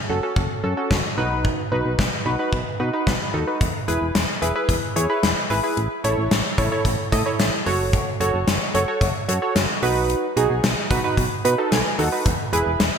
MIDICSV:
0, 0, Header, 1, 4, 480
1, 0, Start_track
1, 0, Key_signature, 4, "major"
1, 0, Tempo, 540541
1, 1285, Time_signature, 4, 2, 24, 8
1, 11526, End_track
2, 0, Start_track
2, 0, Title_t, "Synth keys"
2, 0, Program_c, 0, 88
2, 86, Note_on_c, 0, 61, 83
2, 86, Note_on_c, 0, 66, 76
2, 86, Note_on_c, 0, 69, 94
2, 169, Note_off_c, 0, 66, 0
2, 169, Note_off_c, 0, 69, 0
2, 170, Note_off_c, 0, 61, 0
2, 205, Note_on_c, 0, 66, 72
2, 206, Note_on_c, 0, 61, 80
2, 206, Note_on_c, 0, 69, 88
2, 373, Note_off_c, 0, 61, 0
2, 373, Note_off_c, 0, 66, 0
2, 374, Note_off_c, 0, 69, 0
2, 565, Note_on_c, 0, 61, 78
2, 565, Note_on_c, 0, 69, 92
2, 566, Note_on_c, 0, 66, 74
2, 649, Note_off_c, 0, 61, 0
2, 649, Note_off_c, 0, 66, 0
2, 649, Note_off_c, 0, 69, 0
2, 685, Note_on_c, 0, 69, 88
2, 686, Note_on_c, 0, 61, 77
2, 686, Note_on_c, 0, 66, 73
2, 853, Note_off_c, 0, 69, 0
2, 854, Note_off_c, 0, 61, 0
2, 854, Note_off_c, 0, 66, 0
2, 1046, Note_on_c, 0, 63, 88
2, 1046, Note_on_c, 0, 66, 78
2, 1046, Note_on_c, 0, 71, 96
2, 1429, Note_off_c, 0, 63, 0
2, 1429, Note_off_c, 0, 66, 0
2, 1430, Note_off_c, 0, 71, 0
2, 1525, Note_on_c, 0, 63, 81
2, 1525, Note_on_c, 0, 66, 76
2, 1525, Note_on_c, 0, 71, 92
2, 1693, Note_off_c, 0, 63, 0
2, 1693, Note_off_c, 0, 66, 0
2, 1693, Note_off_c, 0, 71, 0
2, 2006, Note_on_c, 0, 63, 82
2, 2006, Note_on_c, 0, 66, 77
2, 2006, Note_on_c, 0, 71, 92
2, 2089, Note_off_c, 0, 63, 0
2, 2089, Note_off_c, 0, 66, 0
2, 2089, Note_off_c, 0, 71, 0
2, 2125, Note_on_c, 0, 63, 80
2, 2125, Note_on_c, 0, 66, 71
2, 2125, Note_on_c, 0, 71, 89
2, 2293, Note_off_c, 0, 63, 0
2, 2293, Note_off_c, 0, 66, 0
2, 2293, Note_off_c, 0, 71, 0
2, 2485, Note_on_c, 0, 63, 83
2, 2485, Note_on_c, 0, 66, 76
2, 2485, Note_on_c, 0, 71, 90
2, 2569, Note_off_c, 0, 63, 0
2, 2569, Note_off_c, 0, 66, 0
2, 2569, Note_off_c, 0, 71, 0
2, 2605, Note_on_c, 0, 66, 69
2, 2605, Note_on_c, 0, 71, 88
2, 2606, Note_on_c, 0, 63, 80
2, 2725, Note_on_c, 0, 83, 69
2, 2773, Note_off_c, 0, 66, 0
2, 2773, Note_off_c, 0, 71, 0
2, 2774, Note_off_c, 0, 63, 0
2, 2965, Note_on_c, 0, 63, 83
2, 2965, Note_on_c, 0, 66, 74
2, 2965, Note_on_c, 0, 69, 88
2, 3049, Note_off_c, 0, 63, 0
2, 3049, Note_off_c, 0, 66, 0
2, 3049, Note_off_c, 0, 69, 0
2, 3085, Note_on_c, 0, 63, 76
2, 3085, Note_on_c, 0, 66, 67
2, 3085, Note_on_c, 0, 71, 82
2, 3172, Note_off_c, 0, 83, 0
2, 3205, Note_off_c, 0, 63, 0
2, 3205, Note_off_c, 0, 66, 0
2, 3205, Note_off_c, 0, 71, 0
2, 3445, Note_on_c, 0, 64, 83
2, 3445, Note_on_c, 0, 68, 80
2, 3445, Note_on_c, 0, 71, 94
2, 3613, Note_off_c, 0, 64, 0
2, 3613, Note_off_c, 0, 68, 0
2, 3613, Note_off_c, 0, 71, 0
2, 3925, Note_on_c, 0, 64, 86
2, 3925, Note_on_c, 0, 68, 79
2, 3925, Note_on_c, 0, 71, 93
2, 4009, Note_off_c, 0, 64, 0
2, 4009, Note_off_c, 0, 68, 0
2, 4009, Note_off_c, 0, 71, 0
2, 4045, Note_on_c, 0, 68, 71
2, 4045, Note_on_c, 0, 71, 89
2, 4046, Note_on_c, 0, 64, 81
2, 4213, Note_off_c, 0, 64, 0
2, 4213, Note_off_c, 0, 68, 0
2, 4213, Note_off_c, 0, 71, 0
2, 4405, Note_on_c, 0, 64, 81
2, 4405, Note_on_c, 0, 68, 76
2, 4405, Note_on_c, 0, 73, 89
2, 4489, Note_off_c, 0, 64, 0
2, 4489, Note_off_c, 0, 68, 0
2, 4489, Note_off_c, 0, 73, 0
2, 4525, Note_on_c, 0, 64, 81
2, 4525, Note_on_c, 0, 68, 74
2, 4525, Note_on_c, 0, 71, 86
2, 4693, Note_off_c, 0, 64, 0
2, 4693, Note_off_c, 0, 68, 0
2, 4693, Note_off_c, 0, 71, 0
2, 4885, Note_on_c, 0, 71, 94
2, 4886, Note_on_c, 0, 64, 81
2, 4886, Note_on_c, 0, 68, 77
2, 4969, Note_off_c, 0, 64, 0
2, 4969, Note_off_c, 0, 68, 0
2, 4969, Note_off_c, 0, 71, 0
2, 5004, Note_on_c, 0, 64, 76
2, 5004, Note_on_c, 0, 68, 69
2, 5005, Note_on_c, 0, 71, 84
2, 5125, Note_off_c, 0, 64, 0
2, 5125, Note_off_c, 0, 68, 0
2, 5125, Note_off_c, 0, 71, 0
2, 5365, Note_on_c, 0, 64, 89
2, 5365, Note_on_c, 0, 69, 81
2, 5365, Note_on_c, 0, 73, 93
2, 5533, Note_off_c, 0, 64, 0
2, 5533, Note_off_c, 0, 69, 0
2, 5533, Note_off_c, 0, 73, 0
2, 5845, Note_on_c, 0, 64, 86
2, 5845, Note_on_c, 0, 73, 92
2, 5846, Note_on_c, 0, 69, 79
2, 5929, Note_off_c, 0, 64, 0
2, 5929, Note_off_c, 0, 69, 0
2, 5929, Note_off_c, 0, 73, 0
2, 5966, Note_on_c, 0, 64, 81
2, 5966, Note_on_c, 0, 69, 76
2, 5966, Note_on_c, 0, 73, 91
2, 6133, Note_off_c, 0, 64, 0
2, 6133, Note_off_c, 0, 73, 0
2, 6134, Note_off_c, 0, 69, 0
2, 6326, Note_on_c, 0, 64, 82
2, 6326, Note_on_c, 0, 69, 78
2, 6326, Note_on_c, 0, 75, 95
2, 6409, Note_off_c, 0, 64, 0
2, 6409, Note_off_c, 0, 69, 0
2, 6409, Note_off_c, 0, 75, 0
2, 6445, Note_on_c, 0, 64, 81
2, 6446, Note_on_c, 0, 69, 72
2, 6446, Note_on_c, 0, 73, 88
2, 6613, Note_off_c, 0, 64, 0
2, 6613, Note_off_c, 0, 73, 0
2, 6614, Note_off_c, 0, 69, 0
2, 6806, Note_on_c, 0, 66, 86
2, 6806, Note_on_c, 0, 69, 80
2, 6806, Note_on_c, 0, 73, 98
2, 7189, Note_off_c, 0, 66, 0
2, 7189, Note_off_c, 0, 69, 0
2, 7189, Note_off_c, 0, 73, 0
2, 7285, Note_on_c, 0, 66, 87
2, 7286, Note_on_c, 0, 69, 81
2, 7286, Note_on_c, 0, 73, 96
2, 7453, Note_off_c, 0, 66, 0
2, 7454, Note_off_c, 0, 69, 0
2, 7454, Note_off_c, 0, 73, 0
2, 7766, Note_on_c, 0, 66, 84
2, 7766, Note_on_c, 0, 69, 80
2, 7766, Note_on_c, 0, 73, 100
2, 7849, Note_off_c, 0, 66, 0
2, 7849, Note_off_c, 0, 69, 0
2, 7849, Note_off_c, 0, 73, 0
2, 7886, Note_on_c, 0, 66, 78
2, 7886, Note_on_c, 0, 69, 75
2, 7886, Note_on_c, 0, 73, 89
2, 8054, Note_off_c, 0, 66, 0
2, 8054, Note_off_c, 0, 69, 0
2, 8054, Note_off_c, 0, 73, 0
2, 8245, Note_on_c, 0, 66, 84
2, 8245, Note_on_c, 0, 73, 91
2, 8246, Note_on_c, 0, 69, 79
2, 8329, Note_off_c, 0, 66, 0
2, 8329, Note_off_c, 0, 69, 0
2, 8329, Note_off_c, 0, 73, 0
2, 8366, Note_on_c, 0, 66, 82
2, 8366, Note_on_c, 0, 69, 74
2, 8366, Note_on_c, 0, 73, 86
2, 8533, Note_off_c, 0, 66, 0
2, 8533, Note_off_c, 0, 69, 0
2, 8533, Note_off_c, 0, 73, 0
2, 8726, Note_on_c, 0, 63, 88
2, 8726, Note_on_c, 0, 66, 83
2, 8726, Note_on_c, 0, 71, 99
2, 9110, Note_off_c, 0, 63, 0
2, 9110, Note_off_c, 0, 66, 0
2, 9110, Note_off_c, 0, 71, 0
2, 9206, Note_on_c, 0, 63, 87
2, 9206, Note_on_c, 0, 66, 79
2, 9206, Note_on_c, 0, 68, 93
2, 9373, Note_off_c, 0, 66, 0
2, 9373, Note_off_c, 0, 68, 0
2, 9374, Note_off_c, 0, 63, 0
2, 9685, Note_on_c, 0, 63, 85
2, 9685, Note_on_c, 0, 66, 80
2, 9685, Note_on_c, 0, 71, 96
2, 9769, Note_off_c, 0, 63, 0
2, 9769, Note_off_c, 0, 66, 0
2, 9769, Note_off_c, 0, 71, 0
2, 9805, Note_on_c, 0, 63, 80
2, 9805, Note_on_c, 0, 66, 73
2, 9805, Note_on_c, 0, 71, 91
2, 9973, Note_off_c, 0, 63, 0
2, 9973, Note_off_c, 0, 66, 0
2, 9973, Note_off_c, 0, 71, 0
2, 10166, Note_on_c, 0, 63, 84
2, 10166, Note_on_c, 0, 66, 76
2, 10166, Note_on_c, 0, 71, 95
2, 10166, Note_on_c, 0, 83, 69
2, 10249, Note_off_c, 0, 63, 0
2, 10249, Note_off_c, 0, 66, 0
2, 10249, Note_off_c, 0, 71, 0
2, 10286, Note_on_c, 0, 63, 80
2, 10286, Note_on_c, 0, 66, 74
2, 10286, Note_on_c, 0, 69, 89
2, 10389, Note_off_c, 0, 83, 0
2, 10405, Note_on_c, 0, 80, 75
2, 10453, Note_off_c, 0, 66, 0
2, 10453, Note_off_c, 0, 69, 0
2, 10454, Note_off_c, 0, 63, 0
2, 10628, Note_off_c, 0, 80, 0
2, 10645, Note_on_c, 0, 63, 83
2, 10645, Note_on_c, 0, 66, 75
2, 10645, Note_on_c, 0, 69, 89
2, 10645, Note_on_c, 0, 78, 72
2, 10729, Note_off_c, 0, 63, 0
2, 10729, Note_off_c, 0, 66, 0
2, 10729, Note_off_c, 0, 69, 0
2, 10765, Note_on_c, 0, 63, 75
2, 10765, Note_on_c, 0, 66, 68
2, 10765, Note_on_c, 0, 71, 84
2, 10868, Note_off_c, 0, 78, 0
2, 10885, Note_off_c, 0, 63, 0
2, 10885, Note_off_c, 0, 66, 0
2, 10885, Note_off_c, 0, 71, 0
2, 11125, Note_on_c, 0, 64, 86
2, 11125, Note_on_c, 0, 68, 81
2, 11125, Note_on_c, 0, 71, 94
2, 11293, Note_off_c, 0, 64, 0
2, 11293, Note_off_c, 0, 68, 0
2, 11293, Note_off_c, 0, 71, 0
2, 11526, End_track
3, 0, Start_track
3, 0, Title_t, "FM bass"
3, 0, Program_c, 1, 39
3, 86, Note_on_c, 1, 30, 102
3, 182, Note_off_c, 1, 30, 0
3, 323, Note_on_c, 1, 30, 100
3, 420, Note_off_c, 1, 30, 0
3, 565, Note_on_c, 1, 42, 98
3, 661, Note_off_c, 1, 42, 0
3, 806, Note_on_c, 1, 30, 97
3, 902, Note_off_c, 1, 30, 0
3, 1045, Note_on_c, 1, 35, 93
3, 1334, Note_off_c, 1, 35, 0
3, 1525, Note_on_c, 1, 35, 102
3, 1622, Note_off_c, 1, 35, 0
3, 1645, Note_on_c, 1, 35, 98
3, 1742, Note_off_c, 1, 35, 0
3, 1765, Note_on_c, 1, 35, 106
3, 1861, Note_off_c, 1, 35, 0
3, 2005, Note_on_c, 1, 35, 101
3, 2102, Note_off_c, 1, 35, 0
3, 2243, Note_on_c, 1, 35, 103
3, 2340, Note_off_c, 1, 35, 0
3, 2485, Note_on_c, 1, 47, 99
3, 2582, Note_off_c, 1, 47, 0
3, 2726, Note_on_c, 1, 35, 96
3, 2822, Note_off_c, 1, 35, 0
3, 2966, Note_on_c, 1, 39, 89
3, 3062, Note_off_c, 1, 39, 0
3, 3205, Note_on_c, 1, 28, 109
3, 3302, Note_off_c, 1, 28, 0
3, 3446, Note_on_c, 1, 28, 99
3, 3542, Note_off_c, 1, 28, 0
3, 3565, Note_on_c, 1, 28, 91
3, 3662, Note_off_c, 1, 28, 0
3, 3685, Note_on_c, 1, 28, 104
3, 3782, Note_off_c, 1, 28, 0
3, 3925, Note_on_c, 1, 28, 99
3, 4022, Note_off_c, 1, 28, 0
3, 4163, Note_on_c, 1, 28, 102
3, 4260, Note_off_c, 1, 28, 0
3, 4405, Note_on_c, 1, 40, 107
3, 4502, Note_off_c, 1, 40, 0
3, 4645, Note_on_c, 1, 28, 105
3, 4742, Note_off_c, 1, 28, 0
3, 4885, Note_on_c, 1, 32, 91
3, 4982, Note_off_c, 1, 32, 0
3, 5126, Note_on_c, 1, 33, 108
3, 5222, Note_off_c, 1, 33, 0
3, 5365, Note_on_c, 1, 33, 97
3, 5462, Note_off_c, 1, 33, 0
3, 5485, Note_on_c, 1, 33, 98
3, 5582, Note_off_c, 1, 33, 0
3, 5605, Note_on_c, 1, 33, 105
3, 5701, Note_off_c, 1, 33, 0
3, 5844, Note_on_c, 1, 33, 102
3, 5941, Note_off_c, 1, 33, 0
3, 6082, Note_on_c, 1, 33, 103
3, 6180, Note_off_c, 1, 33, 0
3, 6326, Note_on_c, 1, 45, 98
3, 6422, Note_off_c, 1, 45, 0
3, 6565, Note_on_c, 1, 33, 101
3, 6661, Note_off_c, 1, 33, 0
3, 6805, Note_on_c, 1, 30, 104
3, 7094, Note_off_c, 1, 30, 0
3, 7285, Note_on_c, 1, 30, 98
3, 7381, Note_off_c, 1, 30, 0
3, 7405, Note_on_c, 1, 30, 97
3, 7501, Note_off_c, 1, 30, 0
3, 7525, Note_on_c, 1, 30, 105
3, 7621, Note_off_c, 1, 30, 0
3, 7765, Note_on_c, 1, 30, 104
3, 7861, Note_off_c, 1, 30, 0
3, 8002, Note_on_c, 1, 30, 103
3, 8100, Note_off_c, 1, 30, 0
3, 8245, Note_on_c, 1, 42, 100
3, 8341, Note_off_c, 1, 42, 0
3, 8485, Note_on_c, 1, 30, 103
3, 8582, Note_off_c, 1, 30, 0
3, 8726, Note_on_c, 1, 35, 97
3, 9015, Note_off_c, 1, 35, 0
3, 9205, Note_on_c, 1, 35, 106
3, 9302, Note_off_c, 1, 35, 0
3, 9325, Note_on_c, 1, 35, 102
3, 9421, Note_off_c, 1, 35, 0
3, 9445, Note_on_c, 1, 35, 106
3, 9542, Note_off_c, 1, 35, 0
3, 9685, Note_on_c, 1, 35, 100
3, 9781, Note_off_c, 1, 35, 0
3, 9923, Note_on_c, 1, 35, 110
3, 10020, Note_off_c, 1, 35, 0
3, 10165, Note_on_c, 1, 47, 101
3, 10262, Note_off_c, 1, 47, 0
3, 10405, Note_on_c, 1, 35, 97
3, 10502, Note_off_c, 1, 35, 0
3, 10645, Note_on_c, 1, 39, 95
3, 10742, Note_off_c, 1, 39, 0
3, 10885, Note_on_c, 1, 28, 108
3, 10981, Note_off_c, 1, 28, 0
3, 11125, Note_on_c, 1, 28, 100
3, 11221, Note_off_c, 1, 28, 0
3, 11245, Note_on_c, 1, 28, 97
3, 11342, Note_off_c, 1, 28, 0
3, 11365, Note_on_c, 1, 28, 105
3, 11461, Note_off_c, 1, 28, 0
3, 11526, End_track
4, 0, Start_track
4, 0, Title_t, "Drums"
4, 323, Note_on_c, 9, 36, 109
4, 412, Note_off_c, 9, 36, 0
4, 806, Note_on_c, 9, 36, 110
4, 808, Note_on_c, 9, 38, 111
4, 894, Note_off_c, 9, 36, 0
4, 897, Note_off_c, 9, 38, 0
4, 1285, Note_on_c, 9, 36, 110
4, 1374, Note_off_c, 9, 36, 0
4, 1765, Note_on_c, 9, 36, 111
4, 1768, Note_on_c, 9, 38, 112
4, 1854, Note_off_c, 9, 36, 0
4, 1856, Note_off_c, 9, 38, 0
4, 2243, Note_on_c, 9, 36, 113
4, 2332, Note_off_c, 9, 36, 0
4, 2726, Note_on_c, 9, 36, 112
4, 2728, Note_on_c, 9, 38, 115
4, 2814, Note_off_c, 9, 36, 0
4, 2817, Note_off_c, 9, 38, 0
4, 3205, Note_on_c, 9, 36, 111
4, 3206, Note_on_c, 9, 42, 77
4, 3294, Note_off_c, 9, 36, 0
4, 3295, Note_off_c, 9, 42, 0
4, 3448, Note_on_c, 9, 42, 78
4, 3536, Note_off_c, 9, 42, 0
4, 3686, Note_on_c, 9, 42, 75
4, 3687, Note_on_c, 9, 38, 116
4, 3775, Note_off_c, 9, 42, 0
4, 3776, Note_off_c, 9, 38, 0
4, 3928, Note_on_c, 9, 42, 70
4, 4017, Note_off_c, 9, 42, 0
4, 4162, Note_on_c, 9, 36, 92
4, 4166, Note_on_c, 9, 42, 80
4, 4251, Note_off_c, 9, 36, 0
4, 4255, Note_off_c, 9, 42, 0
4, 4408, Note_on_c, 9, 42, 86
4, 4497, Note_off_c, 9, 42, 0
4, 4647, Note_on_c, 9, 42, 79
4, 4648, Note_on_c, 9, 38, 117
4, 4736, Note_off_c, 9, 42, 0
4, 4737, Note_off_c, 9, 38, 0
4, 4885, Note_on_c, 9, 46, 73
4, 4974, Note_off_c, 9, 46, 0
4, 5125, Note_on_c, 9, 42, 75
4, 5214, Note_off_c, 9, 42, 0
4, 5367, Note_on_c, 9, 42, 79
4, 5456, Note_off_c, 9, 42, 0
4, 5606, Note_on_c, 9, 42, 75
4, 5607, Note_on_c, 9, 38, 115
4, 5695, Note_off_c, 9, 38, 0
4, 5695, Note_off_c, 9, 42, 0
4, 5844, Note_on_c, 9, 36, 99
4, 5847, Note_on_c, 9, 42, 69
4, 5933, Note_off_c, 9, 36, 0
4, 5936, Note_off_c, 9, 42, 0
4, 6082, Note_on_c, 9, 36, 92
4, 6085, Note_on_c, 9, 42, 83
4, 6171, Note_off_c, 9, 36, 0
4, 6174, Note_off_c, 9, 42, 0
4, 6326, Note_on_c, 9, 36, 90
4, 6328, Note_on_c, 9, 42, 88
4, 6415, Note_off_c, 9, 36, 0
4, 6416, Note_off_c, 9, 42, 0
4, 6566, Note_on_c, 9, 42, 79
4, 6568, Note_on_c, 9, 38, 120
4, 6655, Note_off_c, 9, 42, 0
4, 6656, Note_off_c, 9, 38, 0
4, 6805, Note_on_c, 9, 46, 73
4, 6893, Note_off_c, 9, 46, 0
4, 7045, Note_on_c, 9, 36, 111
4, 7045, Note_on_c, 9, 42, 74
4, 7133, Note_off_c, 9, 36, 0
4, 7134, Note_off_c, 9, 42, 0
4, 7287, Note_on_c, 9, 42, 80
4, 7376, Note_off_c, 9, 42, 0
4, 7526, Note_on_c, 9, 42, 76
4, 7527, Note_on_c, 9, 38, 116
4, 7615, Note_off_c, 9, 42, 0
4, 7616, Note_off_c, 9, 38, 0
4, 7767, Note_on_c, 9, 42, 71
4, 7856, Note_off_c, 9, 42, 0
4, 8002, Note_on_c, 9, 36, 96
4, 8005, Note_on_c, 9, 42, 81
4, 8091, Note_off_c, 9, 36, 0
4, 8094, Note_off_c, 9, 42, 0
4, 8247, Note_on_c, 9, 42, 86
4, 8336, Note_off_c, 9, 42, 0
4, 8486, Note_on_c, 9, 42, 81
4, 8488, Note_on_c, 9, 38, 113
4, 8575, Note_off_c, 9, 42, 0
4, 8576, Note_off_c, 9, 38, 0
4, 8725, Note_on_c, 9, 46, 75
4, 8814, Note_off_c, 9, 46, 0
4, 8966, Note_on_c, 9, 42, 78
4, 9055, Note_off_c, 9, 42, 0
4, 9208, Note_on_c, 9, 42, 78
4, 9296, Note_off_c, 9, 42, 0
4, 9446, Note_on_c, 9, 42, 76
4, 9447, Note_on_c, 9, 38, 117
4, 9535, Note_off_c, 9, 42, 0
4, 9536, Note_off_c, 9, 38, 0
4, 9685, Note_on_c, 9, 36, 100
4, 9688, Note_on_c, 9, 42, 69
4, 9773, Note_off_c, 9, 36, 0
4, 9776, Note_off_c, 9, 42, 0
4, 9923, Note_on_c, 9, 36, 95
4, 9926, Note_on_c, 9, 42, 80
4, 10011, Note_off_c, 9, 36, 0
4, 10015, Note_off_c, 9, 42, 0
4, 10168, Note_on_c, 9, 42, 91
4, 10257, Note_off_c, 9, 42, 0
4, 10407, Note_on_c, 9, 42, 80
4, 10408, Note_on_c, 9, 38, 115
4, 10496, Note_off_c, 9, 42, 0
4, 10497, Note_off_c, 9, 38, 0
4, 10645, Note_on_c, 9, 46, 73
4, 10734, Note_off_c, 9, 46, 0
4, 10885, Note_on_c, 9, 36, 113
4, 10886, Note_on_c, 9, 42, 78
4, 10974, Note_off_c, 9, 36, 0
4, 10975, Note_off_c, 9, 42, 0
4, 11128, Note_on_c, 9, 42, 78
4, 11216, Note_off_c, 9, 42, 0
4, 11366, Note_on_c, 9, 42, 77
4, 11367, Note_on_c, 9, 38, 121
4, 11455, Note_off_c, 9, 42, 0
4, 11456, Note_off_c, 9, 38, 0
4, 11526, End_track
0, 0, End_of_file